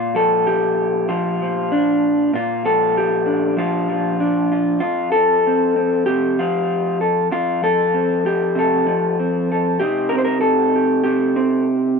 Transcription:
0.00 2.29 A#2 medium
0.00 0.15 F4 medium
0.15 1.09 F3 medium
0.15 1.08 A4 medium
0.47 1.72 G4 medium
1.09 1.42 F3 medium
1.09 2.34 F4 medium
1.42 2.64 F3 medium
1.72 2.30 D4 soft
2.34 4.77 A#2 medium
2.34 2.65 F4 medium
2.65 3.57 F3 medium
2.65 3.58 A4 loud
2.97 4.20 G4 medium
3.26 4.19 D4 soft
3.57 3.89 F3 medium
3.57 4.51 F4 medium
3.89 5.14 F3 medium
4.20 4.78 D4 soft
4.52 4.80 F4 soft
4.80 7.30 F2 medium
4.80 5.11 F4 medium
5.12 6.38 F3 medium
5.12 6.36 A4 loud
5.47 5.76 C4 soft
5.76 6.06 C4 soft
6.06 6.38 C3 medium
6.06 6.99 G4 medium
6.39 7.61 F3 medium
6.39 7.00 F4 medium
7.01 7.27 A4 soft
7.31 9.82 F2 medium
7.31 7.63 F4 medium
7.62 8.85 F3 medium
7.62 8.56 A4 loud
7.94 8.26 C4 soft
8.26 9.19 G4 medium
8.55 8.87 C3 medium
8.55 9.50 A4 medium
8.86 9.81 F3 medium
9.19 9.79 C4 soft
9.52 9.78 A4 soft
9.80 11.05 C3 medium
9.80 10.12 C4 soft
9.80 12.00 D#4 soft
9.80 10.74 G4 medium
10.09 11.36 C4 medium
10.09 10.18 A#4 medium
10.18 10.24 C5 medium
10.24 10.40 A#4 medium
10.41 11.67 A4 medium
10.75 11.03 G4 soft
11.04 12.00 C3 medium
11.04 12.00 G4 medium
11.36 12.00 C4 medium

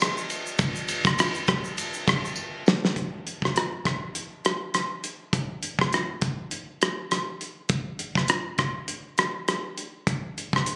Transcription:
0.00 cross-stick medium
0.00 ride medium
0.00 tambourine medium
0.00 shaker medium
0.18 shaker medium
0.30 ride soft
0.30 tambourine soft
0.30 shaker soft
0.46 shaker medium
0.59 kick loud
0.59 ride medium
0.59 tambourine soft
0.59 shaker medium
0.76 shaker medium
0.88 ride medium
0.88 tambourine soft
0.88 shaker medium
1.05 kick medium
1.05 cross-stick medium
1.05 shaker medium
1.19 cross-stick loud
1.19 ride medium
1.19 tambourine medium
1.19 shaker medium
1.35 shaker soft
1.48 kick medium
1.48 cross-stick medium
1.48 ride soft
1.48 shaker medium
1.64 shaker medium
1.77 ride medium
1.77 tambourine medium
1.77 shaker medium
1.94 shaker medium
2.07 kick medium
2.07 cross-stick medium
2.07 ride soft
2.07 tambourine soft
2.07 shaker medium
2.25 shaker soft
2.36 tambourine medium
2.66 snare medium
2.66 tambourine soft
2.85 snare medium
2.96 kick medium
2.96 closed hi-hat medium
3.27 closed hi-hat soft
3.42 kick medium
3.42 cross-stick medium
3.56 cross-stick medium
3.56 closed hi-hat medium
3.85 kick medium
3.85 cross-stick medium
3.85 closed hi-hat soft
4.15 closed hi-hat medium
4.45 cross-stick medium
4.45 closed hi-hat soft
4.74 cross-stick medium
4.74 closed hi-hat medium
5.04 closed hi-hat soft
5.33 kick medium
5.33 closed hi-hat medium
5.63 closed hi-hat soft
5.79 kick medium
5.79 cross-stick medium
5.93 cross-stick medium
5.93 closed hi-hat medium
6.21 kick medium
6.21 closed hi-hat soft
6.51 closed hi-hat medium
6.82 cross-stick medium
6.82 closed hi-hat soft
7.11 cross-stick medium
7.11 closed hi-hat soft
7.41 closed hi-hat soft
7.69 kick medium
7.69 closed hi-hat medium
7.99 closed hi-hat soft
8.15 kick medium
8.15 cross-stick medium
8.28 cross-stick medium
8.28 closed hi-hat medium
8.58 kick medium
8.58 cross-stick medium
8.58 closed hi-hat soft
8.88 closed hi-hat medium
9.18 cross-stick medium
9.18 closed hi-hat soft
9.48 cross-stick medium
9.48 closed hi-hat medium
9.78 closed hi-hat soft
10.07 kick medium
10.07 closed hi-hat medium
10.38 closed hi-hat soft
10.53 kick medium
10.53 cross-stick medium
10.66 closed hi-hat medium

